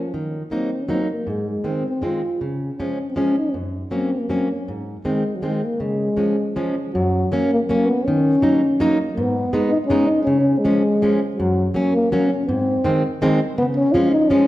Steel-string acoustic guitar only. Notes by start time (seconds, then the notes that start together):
0.14 D#3
0.51 F#3 A#3 D#4
0.89 F#3 A#3 D#4
1.27 G#2
1.64 D#3 G#3 C4
2.02 D#3 G#3 C4
2.41 C#3
2.80 F3 G#3 C#4
3.16 F3 G#3 C#4
3.54 F#2
3.91 F#3 A#3 C#4
4.29 F#3 A#3 C#4
4.68 G#2
5.05 D#3 G#3 C4
5.43 D#3 G#3 C4
5.80 C#3
6.17 F3 G#3 C#4
6.56 F3 G#3 C#4
6.95 F#2
7.32 F#3 A#3 C#4
7.69 F#3 A#3 C#4
8.08 D#3
8.42 F#3 A#3 D#4
8.80 F#3 A#3 D#4
9.17 G#2
9.53 G#3 B3 D#4
9.90 G#3 B3 D#4
10.27 C#3
10.64 F3 G#3 C#4
11.02 F3 G#3 C#4
11.40 F#2
11.74 F#3 A#3 C#4
12.12 F#3 A#3 C#4
12.49 G#2
12.84 D#3 G#3 C4
13.22 D#3 G#3 C4
13.58 C#3
13.94 F3 G#3 C#4
14.30 F3 G#3 C#4